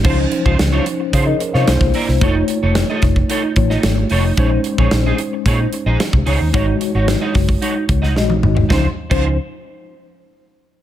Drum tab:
CC |x---------------|----------------|----------------|----------------|
HH |--x-x-x-x-x-x-o-|x-x-x-x-x-x-x-o-|x-x-x-x-x-x-x-o-|x-x-x-o-x-x-----|
SD |----o------ooo-o|----o-o----oo---|----o-------o---|----o-o----oo---|
T1 |----------------|----------------|----------------|-------------o--|
T2 |----------------|----------------|----------------|--------------o-|
FT |----------------|----------------|----------------|---------------o|
BD |o--o----o----o--|o-----oo--o-----|o--o----o----o--|o-----oo--o-----|

CC |---x------------|
HH |----------------|
SD |o---------------|
T1 |----------------|
T2 |----------------|
FT |----------------|
BD |o--o------------|